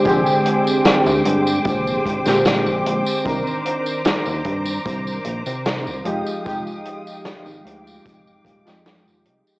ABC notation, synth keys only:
X:1
M:4/4
L:1/16
Q:1/4=75
K:Fdor
V:1 name="Synth keys"
[D,CGA]8- [D,CGA]2 z [D,A,CG]4- [D,A,CG] | [E,CDB]12- [E,CDB]2 [F,A,EG]2 | [F,A,EG]8- [F,A,EG]2 z [F,A,EG]4- [F,A,EG] |]